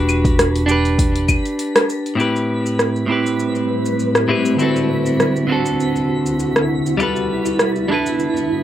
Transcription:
Already playing: fretless electric bass E1, clean electric guitar D4 F#4 G4 B4, synth texture B6
0.09 claves, shaker
0.25 kick, open hi-hat, shaker
0.39 cross-stick, open hi-hat, shaker
0.56 open hi-hat, shaker
0.66 clean electric guitar D4 G4, shaker
0.71 clean electric guitar B4
0.85 open hi-hat, shaker
0.99 kick, open hi-hat, shaker
1.16 open hi-hat
1.28 kick, claves, shaker
1.45 open hi-hat, shaker
1.59 open hi-hat, shaker
1.76 cross-stick, open hi-hat, shaker
1.90 shaker
2.06 open hi-hat, shaker
2.15 clean electric guitar A2 C4 E4, ambient pad G3 B4, synth texture B6
2.19 ambient pad A2 C4, clean electric guitar G4 B4, shaker
2.36 shaker
2.66 shaker
2.79 cross-stick, shaker
2.96 shaker
3.06 clean electric guitar A2 C4 E4
3.11 clean electric guitar G4 B4
3.26 shaker
3.39 shaker
3.55 shaker
3.86 shaker
3.99 shaker
4.15 cross-stick, shaker
4.28 clean electric guitar A2 C4 E4 G4 B4
4.45 shaker
4.56 ambient pad D2 C3 E4 F#4, clean electric guitar D3 C4 E4, shaker
4.61 clean electric guitar F#4 A4
4.76 shaker
5.06 shaker
5.20 cross-stick, shaker
5.36 shaker
5.47 clean electric guitar D3 C4
5.51 clean electric guitar F#4 A4
5.66 shaker
5.80 shaker
5.96 shaker
6.26 shaker
6.39 shaker
6.56 cross-stick, shaker
6.86 shaker
6.97 ambient pad G2 D3 B3, clean electric guitar G3 D4 E4, shaker
7.02 clean electric guitar A4 B4
7.16 shaker
7.46 shaker
7.59 cross-stick, shaker
7.76 shaker
7.88 clean electric guitar G3 D4 E4
7.92 clean electric guitar A4 B4
8.06 shaker
8.20 shaker
8.37 shaker

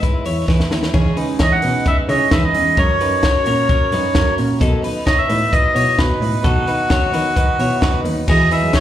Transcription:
0.01 steel-string acoustic guitar G#3 B3 E4 B4, kick, closed hi-hat
0.24 cello E2, steel-string acoustic guitar B3 E4 B4, clean electric guitar C#5, open hi-hat
0.48 steel-string acoustic guitar E3 G#3 B3 E4 B4, kick, snare
0.60 snare
0.70 cello D#2, steel-string acoustic guitar B3 E4 B4, snare
0.83 snare
0.94 steel-string acoustic guitar C#3 E3 G#3 C#4 D#4 G#4, cello C#3, kick, crash
1.16 steel-string acoustic guitar G#3 C#4 D#4 G#4, clean electric guitar B4, open hi-hat
1.39 steel-string acoustic guitar C#3 E3 G#3 C#4 D#4 G#4, clean electric guitar E4 C#5, melodica D#5, kick, snare, closed hi-hat
1.52 melodica F#5
1.62 cello B2, steel-string acoustic guitar G#3 C#4 D#4 G#4, clean electric guitar B4, open hi-hat
1.84 steel-string acoustic guitar G#3 C#4 D#4 G#4, clean electric guitar B4, melodica E5, kick, closed hi-hat
2.07 cello C#3, steel-string acoustic guitar G#3 C#4 D#4 G#4, clean electric guitar E4 C#5, melodica D#5, open hi-hat
2.30 steel-string acoustic guitar C#3 E3 G#3 C#4 D#4 G#4, cello C#3, clean electric guitar B4, melodica E5, kick, snare, closed hi-hat
2.44 melodica D#5
2.54 cello E2, steel-string acoustic guitar G#3 C#4 D#4 G#4, open hi-hat
2.76 cello F#2, steel-string acoustic guitar F#3 C#4 F#4 A#4, melodica C#5, kick, closed hi-hat
2.99 steel-string acoustic guitar C#4 F#4 A#4, clean electric guitar D#4 B4, open hi-hat
3.21 steel-string acoustic guitar F#3 C#4 F#4 A#4, clean electric guitar C#5, kick, snare, closed hi-hat
3.44 cello A#2, steel-string acoustic guitar C#4 F#4 A#4, open hi-hat
3.68 steel-string acoustic guitar F#3 C#4 F#4 A#4, kick, closed hi-hat
3.90 cello F#2, steel-string acoustic guitar C#4 F#4 A#4, clean electric guitar D#4 B4, open hi-hat
4.13 steel-string acoustic guitar F#3 C#4 F#4 A#4, kick, snare, closed hi-hat
4.36 cello A#2, steel-string acoustic guitar C#4 F#4 A#4, open hi-hat
4.58 steel-string acoustic guitar B2 D#3 F#3 B3 D#4 B4, cello B2, clean electric guitar A4, kick, closed hi-hat
4.82 steel-string acoustic guitar F#3 B3 D#4 B4, open hi-hat
5.05 steel-string acoustic guitar B2 D#3 F#3 B3 D#4 B4, clean electric guitar F#4 C#5, melodica D#5, kick, snare, closed hi-hat
5.18 melodica E5
5.28 cello A2, steel-string acoustic guitar F#3 B3 D#4 B4, open hi-hat
5.51 steel-string acoustic guitar F#3 B3 D#4 B4, melodica D#5, kick, closed hi-hat
5.74 cello B2, steel-string acoustic guitar F#3 B3 D#4 B4, clean electric guitar E4 C#5, open hi-hat
5.97 steel-string acoustic guitar B2 D#3 F#3 B3 D#4 B4, cello B2, melodica B4, kick, snare, closed hi-hat
6.20 cello A2, steel-string acoustic guitar F#3 B3 D#4 B4, open hi-hat
6.42 steel-string acoustic guitar B2 D#3 F#3 B3 D#4 B4, cello B2, melodica F#4, clean electric guitar A4, kick, closed hi-hat
6.65 steel-string acoustic guitar F#3 B3 D#4 B4, open hi-hat
6.88 steel-string acoustic guitar B2 D#3 F#3 B3 D#4 B4, clean electric guitar F#4 C#5, kick, snare, closed hi-hat
7.11 cello D#3, steel-string acoustic guitar F#3 B3 D#4 B4, open hi-hat
7.35 steel-string acoustic guitar F#3 B3 D#4 B4, kick, closed hi-hat
7.58 cello B2, steel-string acoustic guitar F#3 B3 D#4 B4, clean electric guitar E4 C#5, open hi-hat
7.82 steel-string acoustic guitar B2 D#3 F#3 B3 D#4 B4, kick, snare, closed hi-hat
8.04 cello D#2, steel-string acoustic guitar F#3 B3 D#4 B4, open hi-hat
8.28 cello E2, steel-string acoustic guitar E3 F#3 B3 E4 G#4, synth keys E4 F#4 G#4, melodica D#5, kick, crash
8.51 steel-string acoustic guitar B3 E4 G#4, clean electric guitar D#4 B4, melodica E5, open hi-hat
8.63 cello F#2
8.73 steel-string acoustic guitar E3 F#3 B3 E4 G#4, synth keys E4 F#4 B4, clean electric guitar C#5, melodica C#5, kick, snare, closed hi-hat

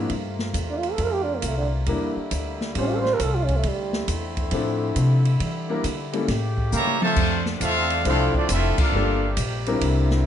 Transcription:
Already playing: trombone section C3 A#3
0.10 upright bass G2, trombone section A3 F4, kick, ride
0.39 snare
0.54 upright bass E2, kick, hi-hat pedal, ride
0.71 trombone D4
0.79 trombone F4
0.83 ride
0.92 trombone A4
0.98 upright bass F2, kick, ride
1.04 trombone A#4
1.13 trombone G4
1.24 trombone D4
1.37 trombone A#3
1.42 upright bass C2, kick, hi-hat pedal, ride
1.48 trombone A3
1.58 trombone D3
1.86 upright bass E2, trombone section D3 G3 E4, grand piano G3 A#3 D4 E4 A#4, kick, ride
2.16 muted upright bass stroke
2.31 upright bass D2, kick, hi-hat pedal, ride
2.61 snare
2.75 upright bass A1, grand piano G3 C4 C#4 F4 C5, trombone section A3 C#4 F4, kick, ride
2.80 trombone C#4
2.88 trombone F4
2.95 trombone A4
3.00 trombone C5
3.05 snare
3.14 trombone A#4
3.19 upright bass C2, kick, hi-hat pedal, ride
3.25 trombone A4
3.36 trombone F4
3.44 trombone C#4
3.48 kick, ride
3.56 trombone A3
3.63 upright bass D2, trombone section D3 A3 C4 E4, kick, ride
3.68 trombone G3
3.93 snare
4.08 upright bass E2, kick, hi-hat pedal, ride
4.37 kick, ride
4.51 upright bass A2, grand piano F3 C4 D4 E4 A4, kick, ride
4.96 upright bass C3, kick, hi-hat pedal, ride
5.25 ride
5.39 upright bass E3, trombone section G3, kick, ride
5.69 grand piano G3 A#3 D4 E4 A#4
5.84 upright bass D3, kick, hi-hat pedal, ride
6.13 grand piano G3 A#3 C#4 E4 A4, ride
6.28 upright bass A2, trombone section C#3 A3 G4, kick, snare, ride
6.58 kick
6.72 upright bass C#3, trombone section E3 G3 A#3, trumpet section G4 C#5 E5 A#5, hi-hat pedal, high tom
6.87 high tom
7.01 trombone section C3 F3 A3, trumpet section F4 C5 E5 A5, mid tom
7.16 upright bass F2, trombone section C3 D3 C4 D4, kick, crash
7.46 snare
7.60 upright bass E2, trombone section A3 C4 F4, trumpet section C4 A4 E5 F5, kick, hi-hat pedal, ride
7.90 ride
8.05 upright bass C2, grand piano F3 C4 D4 E4 A4, trombone section A3 C4 F4, trumpet section C4 E4 F5, kick, ride
8.09 trumpet section A4
8.34 trombone section F3 A3 D4, trumpet section C4 F4 A4 D5, muted upright bass stroke, kick
8.49 upright bass F1, trombone section A3 C4 E4, trumpet section C4 F4 A4 E5, hi-hat pedal, ride
8.78 trombone section A#3 D4 F4, trumpet section D4 A4 A#4 F5, muted upright bass stroke, kick, crash
8.92 upright bass G1, trombone section G3 A#3 G4, grand piano G3 A#3 D4 F4 A4
9.37 upright bass A#1, kick, hi-hat pedal, ride
9.66 grand piano G3 C4 D4 E4 A#4, ride
9.81 upright bass C2, trombone section D3 C4 E4, kick, ride
10.10 snare

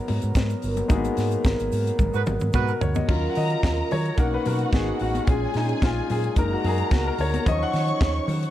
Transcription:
Already playing: french horn section F#3 B3 A#4, grand piano G#3 B3 D#4 F#4 A#4
0.08 fingered electric bass G#2, open hi-hat, muted conga, low conga
0.22 fingered electric bass G#2, closed hi-hat, shaker
0.35 fingered electric bass G#2, kick, snare, closed hi-hat, high conga, shaker
0.50 closed hi-hat, shaker
0.62 fingered electric bass G1, open hi-hat, shaker
0.77 closed hi-hat, high conga, shaker
0.88 fingered electric bass G#1, grand piano G#3 A#3 D#4 F#4 G#4, kick, closed hi-hat, muted conga, shaker
0.95 grand piano B3
1.05 closed hi-hat, shaker
1.17 fingered electric bass G#2, snare, open hi-hat, shaker
1.31 closed hi-hat, shaker
1.44 fingered electric bass G#1, kick, snare, closed hi-hat, high conga, shaker
1.59 fingered electric bass G#1, closed hi-hat, shaker
1.72 fingered electric bass G#2, open hi-hat, shaker
1.87 closed hi-hat, shaker
1.99 fingered electric bass G#1, kick, high tom, low conga, shaker
2.14 fingered electric bass G#2, horn section B3 D#4 F#4 B4, shaker
2.26 fingered electric bass G#1, mid tom, muted conga, low conga, shaker
2.40 fingered electric bass G#2, mid tom, shaker
2.53 fingered electric bass G#2, horn section B3 D#4 F#4 B4, grand piano F#4, kick, mid tom, high conga, shaker
2.68 grand piano A#4, shaker
2.81 fingered electric bass D2, grand piano C#5, floor tom, shaker
2.95 grand piano D#5, floor tom, high conga, shaker
3.08 fingered electric bass D#2, french horn section C#3 F#3 F4, grand piano F#3 C#4 F4, string section A#4 A#5, kick, crash, muted conga
3.30 grand piano F#5
3.35 fingered electric bass D#3, grand piano D#5, open hi-hat
3.50 closed hi-hat
3.63 fingered electric bass D#2, kick, snare, closed hi-hat, high conga
3.91 fingered electric bass D#3, grand piano C#5, open hi-hat, low conga
4.05 closed hi-hat
4.17 fingered electric bass B1, french horn section B2 A#3 D#4, grand piano A#3 C#4 D#4 A#4, string section F#4 F#5, kick, closed hi-hat, muted conga
4.34 grand piano B4
4.45 fingered electric bass B2, grand piano A#4, open hi-hat, muted conga, low conga
4.59 closed hi-hat
4.72 fingered electric bass G#1, grand piano G#4, kick, snare, closed hi-hat, high conga
4.99 fingered electric bass A1, grand piano F#4, open hi-hat
5.14 closed hi-hat, high conga
5.27 fingered electric bass A#1, french horn section A#2 G#3 C#4, grand piano G#3 C#4 F4 G#4, string section G#4 G#5, kick, closed hi-hat, muted conga
5.54 fingered electric bass A#2, grand piano D#4, snare, open hi-hat
5.69 closed hi-hat
5.82 fingered electric bass A#1, grand piano F4, kick, snare, closed hi-hat, high conga
6.10 fingered electric bass A#2, grand piano G#4, open hi-hat, low conga
6.24 closed hi-hat
6.36 fingered electric bass F#1, grand piano G#3 A#3 D#4 A#4, french horn section D#4, string section A#4 A#5, kick, closed hi-hat, muted conga
6.53 grand piano F#4
6.64 fingered electric bass F#2, grand piano G#4, open hi-hat, muted conga, low conga
6.78 closed hi-hat
6.91 fingered electric bass C#2, grand piano F#4, kick, snare, closed hi-hat, high conga
7.07 grand piano A#4
7.18 fingered electric bass D2, grand piano C#5, open hi-hat
7.34 closed hi-hat, high conga
7.45 fingered electric bass D#2, french horn section C#3 D#3 D#4, grand piano F3 F#3 C#4 D#5, string section C#5 C#6, kick, closed hi-hat, muted conga
7.63 grand piano F#5
7.73 fingered electric bass D#3, snare, open hi-hat
7.88 closed hi-hat
8.01 fingered electric bass D#2, kick, snare, closed hi-hat, high conga
8.28 fingered electric bass D#3, open hi-hat, low conga
8.43 closed hi-hat

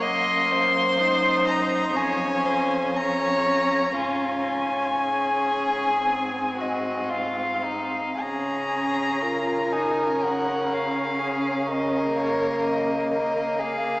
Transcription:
Already playing: viola A#3
0.02 cello F#2, violin D#5 C6
0.52 violin C5
0.99 viola D#4
1.48 violin A#5
1.96 cello F2, viola C#4, violin C#5 G#5
2.46 violin C5
2.95 viola C#4, violin C#5 A#5
3.97 cello G#2, viola C#4, violin F4 G#5
5.01 violin G#4
6.07 viola C4
6.58 violin F#4 D#5
7.10 violin F4 F5
7.64 violin D#4
8.20 cello C#3, viola C#4, violin G#4 A#5
9.21 viola F4, violin A#4
9.72 viola D#4, violin G#5
10.22 viola C#4, violin F#5
10.73 violin F5
11.19 violin G#4
11.68 violin A#4 D#5
12.16 viola A#3, violin C#5
12.64 violin D#5
13.12 violin A#4
13.59 violin G#4 F5

